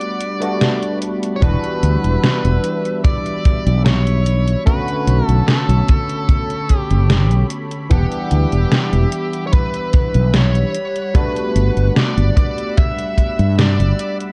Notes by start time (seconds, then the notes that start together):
Already playing: G3 A3 B3 D4 F#4 D5 F#5 B5
0.01 closed hi-hat
0.21 closed hi-hat
0.40 G3 A3 B3 D4 F#4, closed hi-hat
0.61 snare, closed hi-hat
0.83 closed hi-hat
1.02 closed hi-hat
1.23 closed hi-hat
1.36 C#5
1.41 E1 E3 G3 B3 D4 F#4 B4 E5 B5, kick, closed hi-hat
1.64 closed hi-hat
1.83 D2, closed hi-hat
2.04 E1, closed hi-hat
2.24 snare, closed hi-hat
2.45 E1, closed hi-hat
2.64 closed hi-hat
2.85 closed hi-hat
3.04 D5, kick, closed hi-hat
3.26 closed hi-hat
3.45 kick, closed hi-hat
3.67 B1, closed hi-hat
3.86 C#5, snare, closed hi-hat
4.07 closed hi-hat
4.26 closed hi-hat
4.48 closed hi-hat
4.65 D3 A3 B3 C#4 F#4 A4 B4 C#5, kick, closed hi-hat
4.88 closed hi-hat
5.07 B1, closed hi-hat
5.27 B1 A4, closed hi-hat
5.47 A4, snare, closed hi-hat
5.69 B1, closed hi-hat
5.88 kick, closed hi-hat
6.09 closed hi-hat
6.29 kick, closed hi-hat
6.50 closed hi-hat
6.69 kick, closed hi-hat
6.76 G4
6.91 F#1, closed hi-hat
7.10 snare, closed hi-hat
7.31 B1, closed hi-hat
7.50 closed hi-hat
7.71 closed hi-hat
7.89 E1 E3 G3 B3 D4 G4 E5 F#5, kick, closed hi-hat
8.12 closed hi-hat
8.31 D2, closed hi-hat
8.52 E1, closed hi-hat
8.72 snare, closed hi-hat
8.93 E1, closed hi-hat
9.12 closed hi-hat
9.33 closed hi-hat
9.47 C#5
9.53 B4, kick, closed hi-hat
9.74 closed hi-hat
9.93 kick, closed hi-hat
10.14 B1, closed hi-hat
10.34 C#5, snare, closed hi-hat
10.55 closed hi-hat
10.75 F#5, closed hi-hat
10.96 closed hi-hat
11.14 G3 A3 B3 D4 F#4 B4, kick, closed hi-hat
11.36 closed hi-hat
11.55 G1, closed hi-hat
11.77 G1, closed hi-hat
11.96 D5, snare, closed hi-hat
12.17 G1, closed hi-hat
12.37 D5 E6, kick, closed hi-hat
12.58 closed hi-hat
12.77 E5, kick, closed hi-hat
12.99 closed hi-hat
13.18 kick, closed hi-hat
13.39 G2, closed hi-hat
13.59 D5, snare, closed hi-hat
13.80 G1, closed hi-hat
13.99 closed hi-hat
14.21 closed hi-hat